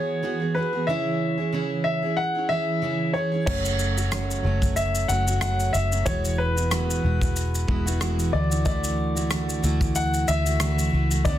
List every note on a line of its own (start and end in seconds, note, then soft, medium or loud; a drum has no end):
0.00 0.21 E3 medium
0.00 0.22 B3 medium
0.00 0.23 F#4 medium
0.00 0.24 G#4 medium
0.00 0.57 C#5 medium
0.23 0.41 E3 medium
0.23 0.41 B3 medium
0.23 0.40 F#4 medium
0.23 0.38 G#4 medium
0.40 0.55 B3 soft
0.40 0.56 F#4 soft
0.40 0.55 G#4 soft
0.55 0.73 E3 soft
0.55 0.74 B3 soft
0.55 0.73 F#4 medium
0.55 0.72 G#4 medium
0.55 0.88 B4 medium
0.73 0.89 B3 soft
0.73 0.88 F#4 soft
0.73 0.88 G#4 medium
0.87 1.38 C#3 medium
0.87 1.38 E3 medium
0.87 1.39 C#4 medium
0.87 1.38 E4 medium
0.87 1.36 G#4 medium
0.87 1.82 E5 medium
1.38 1.53 C#4 soft
1.38 1.53 E4 soft
1.38 1.52 G#4 soft
1.52 2.03 C#3 medium
1.52 2.03 E3 medium
1.52 2.03 C#4 medium
1.52 2.03 E4 medium
1.52 2.01 G#4 medium
1.84 2.18 E5 medium
2.03 2.37 C#4 soft
2.03 2.35 E4 soft
2.03 2.34 G#4 soft
2.17 2.47 F#5 medium
2.35 2.49 C#4 soft
2.35 2.50 E4 soft
2.35 2.50 G#4 soft
2.49 2.81 E3 medium
2.49 2.82 C#4 medium
2.49 2.82 E4 medium
2.49 2.83 G#4 medium
2.49 3.10 E5 medium
2.82 3.14 C#3 medium
2.82 3.13 E3 medium
2.82 3.14 C#4 medium
2.82 3.15 E4 medium
2.82 3.15 G#4 medium
3.13 3.32 E3 soft
3.13 3.33 C#4 soft
3.13 3.33 E4 soft
3.13 3.45 C#5 medium
3.18 3.30 G#4 medium
3.32 3.48 C#4 soft
3.32 3.48 E4 soft
3.32 3.47 G#4 medium
3.46 4.40 F#1 medium
3.46 3.97 F#2 medium
3.46 3.97 C#3 medium
3.46 3.98 F#3 medium
3.46 3.98 A3 medium
3.46 3.97 C#4 medium
3.46 3.96 F#4 medium
3.46 4.72 C#5 medium
3.46 kick loud
3.46 crash medium
3.65 shaker medium
3.79 shaker soft
3.97 4.12 F#3 soft
3.97 4.12 A3 soft
3.97 4.12 C#4 soft
3.97 4.12 F#4 soft
3.97 shaker soft
4.12 4.44 F#2 medium
4.12 4.45 C#3 medium
4.12 4.42 F#3 medium
4.12 4.43 A3 medium
4.12 4.45 C#4 medium
4.12 4.45 F#4 medium
4.12 cross-stick loud
4.12 shaker medium
4.31 shaker soft
4.43 5.05 F#1 medium
4.43 5.07 F#3 medium
4.43 5.08 A3 medium
4.43 5.09 C#4 medium
4.43 5.11 F#4 medium
4.62 kick medium
4.62 shaker medium
4.76 5.07 E5 medium
4.76 shaker medium
4.95 shaker soft
5.08 5.70 F#1 medium
5.08 5.26 F#3 medium
5.08 5.27 A3 medium
5.08 5.26 C#4 medium
5.08 5.25 F#4 medium
5.08 5.39 F#5 medium
5.08 shaker medium
5.26 5.40 F#3 soft
5.26 5.41 A3 soft
5.26 5.42 C#4 soft
5.26 5.41 F#4 soft
5.26 shaker medium
5.41 5.74 F#2 medium
5.41 5.74 C#3 medium
5.41 5.72 F#3 medium
5.41 5.73 A3 medium
5.41 5.74 C#4 medium
5.41 5.75 F#4 medium
5.41 5.75 F#5 medium
5.41 cross-stick loud
5.41 shaker medium
5.60 shaker medium
5.73 6.04 F#1 medium
5.73 5.91 F#3 medium
5.73 5.92 A3 medium
5.73 5.91 C#4 medium
5.73 5.90 F#4 medium
5.73 6.03 E5 medium
5.73 shaker soft
5.91 6.06 F#3 soft
5.91 6.07 A3 soft
5.91 6.07 C#4 soft
5.91 6.06 F#4 soft
5.91 shaker soft
6.06 7.00 E1 medium
6.06 6.56 E3 medium
6.06 6.57 G#3 medium
6.06 6.57 B3 medium
6.06 6.56 E4 medium
6.06 6.54 F#4 medium
6.06 6.39 C#5 medium
6.06 kick loud
6.06 shaker medium
6.25 shaker medium
6.38 8.39 B4 medium
6.55 6.70 B3 soft
6.55 6.71 E4 soft
6.55 6.70 F#4 soft
6.55 shaker soft
6.70 7.03 E3 medium
6.70 7.01 G#3 medium
6.70 7.02 B3 medium
6.70 7.03 E4 medium
6.70 7.04 F#4 medium
6.70 cross-stick loud
6.70 shaker medium
6.90 shaker soft
7.02 7.65 E1 medium
7.02 7.66 G#3 medium
7.02 7.67 B3 medium
7.02 7.69 E4 medium
7.02 7.70 F#4 medium
7.21 kick medium
7.21 shaker medium
7.36 shaker medium
7.55 shaker soft
7.67 8.29 E1 medium
7.67 7.86 G#3 medium
7.67 7.86 B3 medium
7.67 7.86 E4 medium
7.67 7.84 F#4 medium
7.67 kick medium
7.86 8.00 B3 soft
7.86 8.01 E4 soft
7.86 8.01 F#4 medium
7.86 shaker medium
8.00 8.31 E3 medium
8.00 8.32 G#3 medium
8.00 8.33 B3 medium
8.00 8.33 E4 medium
8.00 8.34 F#4 medium
8.00 cross-stick loud
8.00 shaker medium
8.19 shaker medium
8.32 9.59 D2 medium
8.32 8.51 E3 medium
8.32 8.51 A3 medium
8.32 8.51 E4 medium
8.32 8.49 F#4 medium
8.32 8.63 D5 medium
8.50 8.65 A3 soft
8.50 8.65 E4 soft
8.50 8.65 F#4 medium
8.50 shaker soft
8.65 9.16 D3 medium
8.65 9.16 E3 medium
8.65 9.16 A3 medium
8.65 9.16 E4 medium
8.65 9.14 F#4 medium
8.65 9.99 D5 medium
8.65 kick loud
8.65 shaker medium
8.84 shaker medium
9.15 9.30 A3 soft
9.15 9.31 E4 soft
9.15 9.30 F#4 medium
9.15 shaker soft
9.30 9.63 D3 medium
9.30 9.61 E3 medium
9.30 9.63 A3 medium
9.30 9.64 E4 medium
9.30 9.64 F#4 medium
9.30 cross-stick loud
9.30 shaker medium
9.49 shaker soft
9.62 10.24 D2 medium
9.62 10.26 E3 medium
9.62 10.27 A3 medium
9.62 10.28 E4 medium
9.62 10.30 F#4 medium
9.62 shaker medium
9.81 kick medium
9.81 shaker medium
9.96 10.26 F#5 medium
9.96 shaker medium
10.14 shaker soft
10.27 10.89 D2 medium
10.27 10.45 E3 medium
10.27 10.46 A3 medium
10.27 10.46 E4 medium
10.27 10.44 F#4 medium
10.27 11.28 E5 loud
10.27 shaker medium
10.45 10.60 A3 soft
10.45 10.60 E4 soft
10.45 10.60 F#4 medium
10.45 shaker medium
10.59 10.92 D3 medium
10.59 10.90 E3 medium
10.59 10.92 A3 medium
10.59 10.93 E4 medium
10.59 10.94 F#4 medium
10.59 cross-stick loud
10.59 shaker medium
10.79 shaker medium
10.91 11.23 C#2 medium
10.91 11.10 E3 medium
10.91 11.11 A3 medium
10.91 11.11 E4 medium
10.91 11.09 F#4 medium
11.10 11.26 A3 soft
11.10 11.26 E4 soft
11.10 11.25 F#4 medium
11.10 shaker soft
11.25 11.38 D2 loud
11.25 11.38 D3 medium
11.25 11.38 F#3 medium
11.25 11.38 B3 medium
11.25 11.38 D4 medium
11.25 11.38 F#4 medium
11.25 11.38 D5 medium
11.25 kick loud
11.25 shaker medium